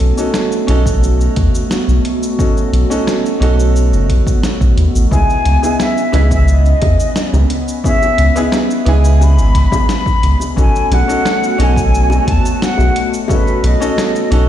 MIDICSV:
0, 0, Header, 1, 6, 480
1, 0, Start_track
1, 0, Tempo, 681818
1, 1681, Time_signature, 4, 2, 24, 8
1, 10200, End_track
2, 0, Start_track
2, 0, Title_t, "Flute"
2, 0, Program_c, 0, 73
2, 3605, Note_on_c, 0, 80, 106
2, 4097, Note_on_c, 0, 76, 92
2, 4108, Note_off_c, 0, 80, 0
2, 4451, Note_off_c, 0, 76, 0
2, 4456, Note_on_c, 0, 76, 79
2, 4560, Note_off_c, 0, 76, 0
2, 4578, Note_on_c, 0, 75, 83
2, 5261, Note_off_c, 0, 75, 0
2, 5530, Note_on_c, 0, 76, 111
2, 5977, Note_off_c, 0, 76, 0
2, 6251, Note_on_c, 0, 80, 96
2, 6495, Note_on_c, 0, 83, 114
2, 6505, Note_off_c, 0, 80, 0
2, 6968, Note_off_c, 0, 83, 0
2, 6974, Note_on_c, 0, 83, 113
2, 7304, Note_off_c, 0, 83, 0
2, 7459, Note_on_c, 0, 80, 98
2, 7700, Note_on_c, 0, 78, 96
2, 7710, Note_off_c, 0, 80, 0
2, 8170, Note_off_c, 0, 78, 0
2, 8181, Note_on_c, 0, 80, 105
2, 8657, Note_on_c, 0, 81, 93
2, 8668, Note_off_c, 0, 80, 0
2, 8889, Note_off_c, 0, 81, 0
2, 8894, Note_on_c, 0, 78, 100
2, 9224, Note_off_c, 0, 78, 0
2, 9374, Note_on_c, 0, 71, 87
2, 9614, Note_on_c, 0, 75, 86
2, 9624, Note_off_c, 0, 71, 0
2, 10087, Note_off_c, 0, 75, 0
2, 10200, End_track
3, 0, Start_track
3, 0, Title_t, "Grand piano"
3, 0, Program_c, 1, 0
3, 0, Control_c, 1, 64, 127
3, 0, Note_on_c, 1, 61, 70
3, 0, Note_on_c, 1, 63, 67
3, 0, Note_on_c, 1, 66, 63
3, 0, Note_on_c, 1, 69, 78
3, 92, Note_off_c, 1, 61, 0
3, 94, Note_off_c, 1, 63, 0
3, 95, Note_off_c, 1, 66, 0
3, 98, Note_off_c, 1, 69, 0
3, 122, Note_on_c, 1, 61, 69
3, 126, Note_on_c, 1, 63, 63
3, 129, Note_on_c, 1, 66, 65
3, 133, Note_on_c, 1, 69, 82
3, 452, Note_off_c, 1, 61, 0
3, 454, Note_off_c, 1, 63, 0
3, 456, Note_off_c, 1, 66, 0
3, 458, Note_off_c, 1, 69, 0
3, 471, Note_on_c, 1, 61, 83
3, 479, Note_on_c, 1, 63, 81
3, 486, Note_on_c, 1, 66, 74
3, 494, Note_on_c, 1, 69, 95
3, 1648, Note_off_c, 1, 61, 0
3, 1652, Note_off_c, 1, 63, 0
3, 1655, Note_off_c, 1, 66, 0
3, 1659, Note_off_c, 1, 69, 0
3, 1679, Note_on_c, 1, 61, 68
3, 1681, Note_on_c, 1, 63, 66
3, 1685, Note_on_c, 1, 66, 66
3, 1690, Note_on_c, 1, 69, 75
3, 2012, Note_off_c, 1, 61, 0
3, 2013, Note_off_c, 1, 63, 0
3, 2015, Note_off_c, 1, 66, 0
3, 2018, Note_off_c, 1, 69, 0
3, 2041, Note_on_c, 1, 61, 84
3, 2043, Note_on_c, 1, 63, 78
3, 2050, Note_on_c, 1, 66, 74
3, 2053, Note_on_c, 1, 69, 86
3, 2372, Note_off_c, 1, 61, 0
3, 2373, Note_off_c, 1, 63, 0
3, 2376, Note_off_c, 1, 66, 0
3, 2378, Note_off_c, 1, 69, 0
3, 2392, Note_on_c, 1, 61, 85
3, 2400, Note_on_c, 1, 63, 81
3, 2409, Note_on_c, 1, 66, 79
3, 2415, Note_on_c, 1, 69, 96
3, 3568, Note_off_c, 1, 61, 0
3, 3572, Note_off_c, 1, 63, 0
3, 3576, Note_off_c, 1, 66, 0
3, 3580, Note_off_c, 1, 69, 0
3, 3597, Note_on_c, 1, 59, 73
3, 3600, Note_on_c, 1, 63, 66
3, 3604, Note_on_c, 1, 64, 63
3, 3608, Note_on_c, 1, 68, 78
3, 3611, Control_c, 1, 64, 0
3, 3721, Control_c, 1, 64, 127
3, 3932, Note_off_c, 1, 59, 0
3, 3933, Note_off_c, 1, 63, 0
3, 3935, Note_off_c, 1, 64, 0
3, 3937, Note_off_c, 1, 68, 0
3, 3959, Note_on_c, 1, 59, 67
3, 3962, Note_on_c, 1, 63, 63
3, 3965, Note_on_c, 1, 64, 65
3, 3969, Note_on_c, 1, 68, 76
3, 4291, Note_off_c, 1, 59, 0
3, 4292, Note_off_c, 1, 63, 0
3, 4294, Note_off_c, 1, 64, 0
3, 4296, Note_off_c, 1, 68, 0
3, 4311, Note_on_c, 1, 59, 83
3, 4318, Note_on_c, 1, 63, 76
3, 4325, Note_on_c, 1, 64, 81
3, 4332, Note_on_c, 1, 68, 93
3, 5488, Note_off_c, 1, 59, 0
3, 5491, Note_off_c, 1, 63, 0
3, 5495, Note_off_c, 1, 64, 0
3, 5498, Note_off_c, 1, 68, 0
3, 5518, Note_on_c, 1, 59, 70
3, 5525, Note_on_c, 1, 61, 70
3, 5527, Note_on_c, 1, 64, 64
3, 5532, Note_on_c, 1, 68, 78
3, 5852, Note_off_c, 1, 59, 0
3, 5855, Note_off_c, 1, 61, 0
3, 5856, Note_off_c, 1, 64, 0
3, 5859, Note_off_c, 1, 68, 0
3, 5883, Note_on_c, 1, 59, 89
3, 5884, Note_on_c, 1, 63, 80
3, 5891, Note_on_c, 1, 64, 72
3, 5893, Note_on_c, 1, 68, 93
3, 6213, Note_off_c, 1, 59, 0
3, 6213, Note_off_c, 1, 63, 0
3, 6217, Note_off_c, 1, 64, 0
3, 6218, Note_off_c, 1, 68, 0
3, 6233, Note_on_c, 1, 59, 85
3, 6240, Note_on_c, 1, 63, 80
3, 6248, Note_on_c, 1, 64, 85
3, 6255, Note_on_c, 1, 68, 104
3, 7408, Note_off_c, 1, 59, 0
3, 7412, Note_off_c, 1, 63, 0
3, 7416, Note_off_c, 1, 64, 0
3, 7420, Note_off_c, 1, 68, 0
3, 7435, Note_on_c, 1, 61, 71
3, 7440, Note_on_c, 1, 63, 61
3, 7443, Note_on_c, 1, 66, 64
3, 7447, Note_on_c, 1, 69, 80
3, 7450, Control_c, 1, 64, 0
3, 7555, Control_c, 1, 64, 127
3, 7770, Note_off_c, 1, 61, 0
3, 7773, Note_off_c, 1, 63, 0
3, 7774, Note_off_c, 1, 66, 0
3, 7776, Note_off_c, 1, 69, 0
3, 7798, Note_on_c, 1, 61, 75
3, 7803, Note_on_c, 1, 63, 67
3, 7805, Note_on_c, 1, 66, 69
3, 7808, Note_on_c, 1, 69, 85
3, 8130, Note_off_c, 1, 61, 0
3, 8133, Note_off_c, 1, 63, 0
3, 8134, Note_off_c, 1, 66, 0
3, 8135, Note_off_c, 1, 69, 0
3, 8152, Note_on_c, 1, 61, 90
3, 8158, Note_on_c, 1, 63, 80
3, 8166, Note_on_c, 1, 66, 83
3, 8174, Note_on_c, 1, 69, 99
3, 9328, Note_off_c, 1, 61, 0
3, 9331, Note_off_c, 1, 63, 0
3, 9335, Note_off_c, 1, 66, 0
3, 9339, Note_off_c, 1, 69, 0
3, 9355, Note_on_c, 1, 61, 72
3, 9359, Note_on_c, 1, 63, 65
3, 9361, Note_on_c, 1, 66, 66
3, 9365, Note_on_c, 1, 69, 81
3, 9690, Note_off_c, 1, 61, 0
3, 9693, Note_off_c, 1, 63, 0
3, 9694, Note_off_c, 1, 66, 0
3, 9695, Note_off_c, 1, 69, 0
3, 9716, Note_on_c, 1, 61, 82
3, 9719, Note_on_c, 1, 63, 81
3, 9723, Note_on_c, 1, 66, 82
3, 9727, Note_on_c, 1, 69, 101
3, 10050, Note_off_c, 1, 61, 0
3, 10051, Note_off_c, 1, 63, 0
3, 10053, Note_off_c, 1, 66, 0
3, 10055, Note_off_c, 1, 69, 0
3, 10070, Note_on_c, 1, 61, 87
3, 10077, Note_on_c, 1, 63, 88
3, 10085, Note_on_c, 1, 66, 81
3, 10091, Note_on_c, 1, 69, 103
3, 10200, Note_off_c, 1, 61, 0
3, 10200, Note_off_c, 1, 63, 0
3, 10200, Note_off_c, 1, 66, 0
3, 10200, Note_off_c, 1, 69, 0
3, 10200, End_track
4, 0, Start_track
4, 0, Title_t, "Analog synth pad"
4, 0, Program_c, 2, 89
4, 0, Note_on_c, 2, 57, 64
4, 0, Note_on_c, 2, 59, 70
4, 0, Note_on_c, 2, 66, 78
4, 3573, Note_off_c, 2, 57, 0
4, 3573, Note_off_c, 2, 66, 0
4, 3600, Note_on_c, 2, 61, 65
4, 7412, Note_off_c, 2, 61, 0
4, 7413, Note_off_c, 2, 59, 0
4, 7441, Note_on_c, 2, 57, 64
4, 7443, Note_on_c, 2, 59, 65
4, 7444, Note_on_c, 2, 66, 85
4, 10200, Note_off_c, 2, 57, 0
4, 10200, Note_off_c, 2, 59, 0
4, 10200, Note_off_c, 2, 66, 0
4, 10200, End_track
5, 0, Start_track
5, 0, Title_t, "Analog synth bass"
5, 0, Program_c, 3, 38
5, 3, Note_on_c, 3, 35, 89
5, 88, Note_off_c, 3, 35, 0
5, 481, Note_on_c, 3, 35, 89
5, 905, Note_off_c, 3, 35, 0
5, 962, Note_on_c, 3, 39, 72
5, 1047, Note_off_c, 3, 39, 0
5, 1323, Note_on_c, 3, 35, 94
5, 1406, Note_off_c, 3, 35, 0
5, 1919, Note_on_c, 3, 35, 88
5, 2006, Note_off_c, 3, 35, 0
5, 2398, Note_on_c, 3, 35, 84
5, 2757, Note_on_c, 3, 30, 88
5, 2768, Note_off_c, 3, 35, 0
5, 2883, Note_on_c, 3, 35, 82
5, 2893, Note_off_c, 3, 30, 0
5, 2968, Note_off_c, 3, 35, 0
5, 3242, Note_on_c, 3, 35, 82
5, 3326, Note_off_c, 3, 35, 0
5, 3355, Note_on_c, 3, 39, 86
5, 3444, Note_off_c, 3, 39, 0
5, 3482, Note_on_c, 3, 33, 89
5, 3566, Note_off_c, 3, 33, 0
5, 3601, Note_on_c, 3, 37, 101
5, 3687, Note_off_c, 3, 37, 0
5, 3839, Note_on_c, 3, 37, 91
5, 3926, Note_off_c, 3, 37, 0
5, 4317, Note_on_c, 3, 37, 86
5, 4743, Note_off_c, 3, 37, 0
5, 4802, Note_on_c, 3, 40, 79
5, 4887, Note_off_c, 3, 40, 0
5, 5162, Note_on_c, 3, 37, 95
5, 5246, Note_off_c, 3, 37, 0
5, 5759, Note_on_c, 3, 37, 91
5, 5846, Note_off_c, 3, 37, 0
5, 6238, Note_on_c, 3, 37, 92
5, 6599, Note_on_c, 3, 32, 90
5, 6610, Note_off_c, 3, 37, 0
5, 6723, Note_on_c, 3, 37, 82
5, 6733, Note_off_c, 3, 32, 0
5, 6807, Note_off_c, 3, 37, 0
5, 7202, Note_on_c, 3, 37, 84
5, 7287, Note_off_c, 3, 37, 0
5, 7441, Note_on_c, 3, 35, 101
5, 7527, Note_off_c, 3, 35, 0
5, 7679, Note_on_c, 3, 35, 94
5, 7766, Note_off_c, 3, 35, 0
5, 8159, Note_on_c, 3, 35, 88
5, 8584, Note_off_c, 3, 35, 0
5, 8640, Note_on_c, 3, 39, 76
5, 8726, Note_off_c, 3, 39, 0
5, 8998, Note_on_c, 3, 35, 94
5, 9084, Note_off_c, 3, 35, 0
5, 9598, Note_on_c, 3, 35, 89
5, 9685, Note_off_c, 3, 35, 0
5, 10076, Note_on_c, 3, 35, 93
5, 10200, Note_off_c, 3, 35, 0
5, 10200, End_track
6, 0, Start_track
6, 0, Title_t, "Drums"
6, 0, Note_on_c, 9, 42, 82
6, 67, Note_off_c, 9, 42, 0
6, 124, Note_on_c, 9, 82, 66
6, 195, Note_off_c, 9, 82, 0
6, 238, Note_on_c, 9, 38, 95
6, 242, Note_on_c, 9, 82, 54
6, 308, Note_off_c, 9, 38, 0
6, 312, Note_off_c, 9, 82, 0
6, 366, Note_on_c, 9, 82, 33
6, 436, Note_off_c, 9, 82, 0
6, 481, Note_on_c, 9, 42, 83
6, 551, Note_off_c, 9, 42, 0
6, 603, Note_on_c, 9, 36, 105
6, 609, Note_on_c, 9, 82, 65
6, 674, Note_off_c, 9, 36, 0
6, 679, Note_off_c, 9, 82, 0
6, 726, Note_on_c, 9, 82, 53
6, 797, Note_off_c, 9, 82, 0
6, 849, Note_on_c, 9, 82, 33
6, 919, Note_off_c, 9, 82, 0
6, 960, Note_on_c, 9, 42, 78
6, 962, Note_on_c, 9, 36, 104
6, 1031, Note_off_c, 9, 42, 0
6, 1032, Note_off_c, 9, 36, 0
6, 1089, Note_on_c, 9, 82, 63
6, 1159, Note_off_c, 9, 82, 0
6, 1203, Note_on_c, 9, 38, 100
6, 1207, Note_on_c, 9, 82, 57
6, 1273, Note_off_c, 9, 38, 0
6, 1277, Note_off_c, 9, 82, 0
6, 1330, Note_on_c, 9, 82, 30
6, 1400, Note_off_c, 9, 82, 0
6, 1443, Note_on_c, 9, 42, 84
6, 1513, Note_off_c, 9, 42, 0
6, 1569, Note_on_c, 9, 82, 62
6, 1640, Note_off_c, 9, 82, 0
6, 1682, Note_on_c, 9, 36, 124
6, 1687, Note_on_c, 9, 82, 53
6, 1753, Note_off_c, 9, 36, 0
6, 1758, Note_off_c, 9, 82, 0
6, 1811, Note_on_c, 9, 82, 33
6, 1882, Note_off_c, 9, 82, 0
6, 1926, Note_on_c, 9, 42, 82
6, 1996, Note_off_c, 9, 42, 0
6, 2050, Note_on_c, 9, 82, 63
6, 2120, Note_off_c, 9, 82, 0
6, 2164, Note_on_c, 9, 38, 92
6, 2168, Note_on_c, 9, 82, 53
6, 2235, Note_off_c, 9, 38, 0
6, 2239, Note_off_c, 9, 82, 0
6, 2294, Note_on_c, 9, 82, 34
6, 2364, Note_off_c, 9, 82, 0
6, 2407, Note_on_c, 9, 42, 84
6, 2478, Note_off_c, 9, 42, 0
6, 2531, Note_on_c, 9, 82, 62
6, 2602, Note_off_c, 9, 82, 0
6, 2647, Note_on_c, 9, 82, 50
6, 2717, Note_off_c, 9, 82, 0
6, 2768, Note_on_c, 9, 82, 33
6, 2839, Note_off_c, 9, 82, 0
6, 2883, Note_on_c, 9, 36, 58
6, 2884, Note_on_c, 9, 42, 80
6, 2953, Note_off_c, 9, 36, 0
6, 2954, Note_off_c, 9, 42, 0
6, 3004, Note_on_c, 9, 36, 95
6, 3009, Note_on_c, 9, 82, 60
6, 3074, Note_off_c, 9, 36, 0
6, 3079, Note_off_c, 9, 82, 0
6, 3122, Note_on_c, 9, 38, 95
6, 3126, Note_on_c, 9, 82, 56
6, 3192, Note_off_c, 9, 38, 0
6, 3196, Note_off_c, 9, 82, 0
6, 3244, Note_on_c, 9, 36, 107
6, 3247, Note_on_c, 9, 82, 31
6, 3314, Note_off_c, 9, 36, 0
6, 3317, Note_off_c, 9, 82, 0
6, 3362, Note_on_c, 9, 42, 81
6, 3432, Note_off_c, 9, 42, 0
6, 3488, Note_on_c, 9, 82, 64
6, 3558, Note_off_c, 9, 82, 0
6, 3602, Note_on_c, 9, 36, 109
6, 3608, Note_on_c, 9, 82, 50
6, 3672, Note_off_c, 9, 36, 0
6, 3679, Note_off_c, 9, 82, 0
6, 3729, Note_on_c, 9, 82, 34
6, 3799, Note_off_c, 9, 82, 0
6, 3841, Note_on_c, 9, 42, 77
6, 3911, Note_off_c, 9, 42, 0
6, 3964, Note_on_c, 9, 60, 45
6, 3967, Note_on_c, 9, 82, 61
6, 4034, Note_off_c, 9, 60, 0
6, 4038, Note_off_c, 9, 82, 0
6, 4081, Note_on_c, 9, 38, 90
6, 4085, Note_on_c, 9, 82, 54
6, 4151, Note_off_c, 9, 38, 0
6, 4155, Note_off_c, 9, 82, 0
6, 4207, Note_on_c, 9, 82, 33
6, 4277, Note_off_c, 9, 82, 0
6, 4317, Note_on_c, 9, 60, 83
6, 4322, Note_on_c, 9, 42, 84
6, 4388, Note_off_c, 9, 60, 0
6, 4392, Note_off_c, 9, 42, 0
6, 4443, Note_on_c, 9, 36, 106
6, 4444, Note_on_c, 9, 82, 61
6, 4513, Note_off_c, 9, 36, 0
6, 4515, Note_off_c, 9, 82, 0
6, 4560, Note_on_c, 9, 82, 50
6, 4631, Note_off_c, 9, 82, 0
6, 4684, Note_on_c, 9, 82, 32
6, 4754, Note_off_c, 9, 82, 0
6, 4798, Note_on_c, 9, 42, 78
6, 4801, Note_on_c, 9, 60, 52
6, 4802, Note_on_c, 9, 36, 98
6, 4869, Note_off_c, 9, 42, 0
6, 4872, Note_off_c, 9, 36, 0
6, 4872, Note_off_c, 9, 60, 0
6, 4926, Note_on_c, 9, 82, 60
6, 4996, Note_off_c, 9, 82, 0
6, 5039, Note_on_c, 9, 38, 98
6, 5043, Note_on_c, 9, 82, 54
6, 5109, Note_off_c, 9, 38, 0
6, 5113, Note_off_c, 9, 82, 0
6, 5165, Note_on_c, 9, 60, 69
6, 5166, Note_on_c, 9, 82, 31
6, 5236, Note_off_c, 9, 60, 0
6, 5236, Note_off_c, 9, 82, 0
6, 5281, Note_on_c, 9, 42, 86
6, 5351, Note_off_c, 9, 42, 0
6, 5408, Note_on_c, 9, 82, 63
6, 5478, Note_off_c, 9, 82, 0
6, 5522, Note_on_c, 9, 36, 110
6, 5528, Note_on_c, 9, 82, 52
6, 5592, Note_off_c, 9, 36, 0
6, 5599, Note_off_c, 9, 82, 0
6, 5647, Note_on_c, 9, 82, 31
6, 5649, Note_on_c, 9, 60, 43
6, 5718, Note_off_c, 9, 82, 0
6, 5719, Note_off_c, 9, 60, 0
6, 5761, Note_on_c, 9, 42, 81
6, 5831, Note_off_c, 9, 42, 0
6, 5886, Note_on_c, 9, 82, 66
6, 5956, Note_off_c, 9, 82, 0
6, 5999, Note_on_c, 9, 38, 91
6, 6003, Note_on_c, 9, 60, 67
6, 6003, Note_on_c, 9, 82, 50
6, 6069, Note_off_c, 9, 38, 0
6, 6073, Note_off_c, 9, 60, 0
6, 6073, Note_off_c, 9, 82, 0
6, 6128, Note_on_c, 9, 82, 30
6, 6198, Note_off_c, 9, 82, 0
6, 6240, Note_on_c, 9, 42, 80
6, 6310, Note_off_c, 9, 42, 0
6, 6367, Note_on_c, 9, 82, 57
6, 6437, Note_off_c, 9, 82, 0
6, 6484, Note_on_c, 9, 60, 50
6, 6488, Note_on_c, 9, 82, 52
6, 6555, Note_off_c, 9, 60, 0
6, 6559, Note_off_c, 9, 82, 0
6, 6606, Note_on_c, 9, 82, 31
6, 6677, Note_off_c, 9, 82, 0
6, 6722, Note_on_c, 9, 36, 58
6, 6723, Note_on_c, 9, 42, 79
6, 6792, Note_off_c, 9, 36, 0
6, 6793, Note_off_c, 9, 42, 0
6, 6843, Note_on_c, 9, 36, 96
6, 6845, Note_on_c, 9, 60, 78
6, 6849, Note_on_c, 9, 82, 60
6, 6914, Note_off_c, 9, 36, 0
6, 6915, Note_off_c, 9, 60, 0
6, 6919, Note_off_c, 9, 82, 0
6, 6963, Note_on_c, 9, 38, 93
6, 6967, Note_on_c, 9, 82, 53
6, 7033, Note_off_c, 9, 38, 0
6, 7037, Note_off_c, 9, 82, 0
6, 7083, Note_on_c, 9, 36, 104
6, 7089, Note_on_c, 9, 82, 29
6, 7153, Note_off_c, 9, 36, 0
6, 7159, Note_off_c, 9, 82, 0
6, 7204, Note_on_c, 9, 42, 83
6, 7274, Note_off_c, 9, 42, 0
6, 7321, Note_on_c, 9, 60, 46
6, 7330, Note_on_c, 9, 82, 58
6, 7391, Note_off_c, 9, 60, 0
6, 7401, Note_off_c, 9, 82, 0
6, 7441, Note_on_c, 9, 36, 104
6, 7448, Note_on_c, 9, 82, 48
6, 7512, Note_off_c, 9, 36, 0
6, 7518, Note_off_c, 9, 82, 0
6, 7571, Note_on_c, 9, 82, 32
6, 7641, Note_off_c, 9, 82, 0
6, 7685, Note_on_c, 9, 42, 85
6, 7690, Note_on_c, 9, 60, 67
6, 7756, Note_off_c, 9, 42, 0
6, 7760, Note_off_c, 9, 60, 0
6, 7812, Note_on_c, 9, 82, 63
6, 7882, Note_off_c, 9, 82, 0
6, 7924, Note_on_c, 9, 38, 94
6, 7928, Note_on_c, 9, 82, 53
6, 7994, Note_off_c, 9, 38, 0
6, 7998, Note_off_c, 9, 82, 0
6, 8051, Note_on_c, 9, 82, 29
6, 8121, Note_off_c, 9, 82, 0
6, 8156, Note_on_c, 9, 60, 47
6, 8165, Note_on_c, 9, 42, 90
6, 8227, Note_off_c, 9, 60, 0
6, 8236, Note_off_c, 9, 42, 0
6, 8282, Note_on_c, 9, 36, 98
6, 8290, Note_on_c, 9, 82, 61
6, 8353, Note_off_c, 9, 36, 0
6, 8360, Note_off_c, 9, 82, 0
6, 8409, Note_on_c, 9, 82, 51
6, 8479, Note_off_c, 9, 82, 0
6, 8518, Note_on_c, 9, 60, 65
6, 8532, Note_on_c, 9, 82, 30
6, 8588, Note_off_c, 9, 60, 0
6, 8602, Note_off_c, 9, 82, 0
6, 8641, Note_on_c, 9, 36, 97
6, 8643, Note_on_c, 9, 42, 85
6, 8711, Note_off_c, 9, 36, 0
6, 8714, Note_off_c, 9, 42, 0
6, 8767, Note_on_c, 9, 82, 56
6, 8838, Note_off_c, 9, 82, 0
6, 8886, Note_on_c, 9, 38, 101
6, 8890, Note_on_c, 9, 82, 55
6, 8956, Note_off_c, 9, 38, 0
6, 8960, Note_off_c, 9, 82, 0
6, 8995, Note_on_c, 9, 60, 50
6, 9009, Note_on_c, 9, 82, 31
6, 9065, Note_off_c, 9, 60, 0
6, 9080, Note_off_c, 9, 82, 0
6, 9124, Note_on_c, 9, 42, 84
6, 9194, Note_off_c, 9, 42, 0
6, 9248, Note_on_c, 9, 82, 55
6, 9318, Note_off_c, 9, 82, 0
6, 9349, Note_on_c, 9, 60, 63
6, 9360, Note_on_c, 9, 36, 117
6, 9365, Note_on_c, 9, 82, 54
6, 9420, Note_off_c, 9, 60, 0
6, 9431, Note_off_c, 9, 36, 0
6, 9435, Note_off_c, 9, 82, 0
6, 9484, Note_on_c, 9, 82, 31
6, 9555, Note_off_c, 9, 82, 0
6, 9601, Note_on_c, 9, 42, 91
6, 9672, Note_off_c, 9, 42, 0
6, 9728, Note_on_c, 9, 82, 62
6, 9799, Note_off_c, 9, 82, 0
6, 9833, Note_on_c, 9, 60, 50
6, 9842, Note_on_c, 9, 38, 100
6, 9846, Note_on_c, 9, 82, 53
6, 9904, Note_off_c, 9, 60, 0
6, 9913, Note_off_c, 9, 38, 0
6, 9917, Note_off_c, 9, 82, 0
6, 9965, Note_on_c, 9, 82, 30
6, 10035, Note_off_c, 9, 82, 0
6, 10079, Note_on_c, 9, 42, 93
6, 10150, Note_off_c, 9, 42, 0
6, 10200, End_track
0, 0, End_of_file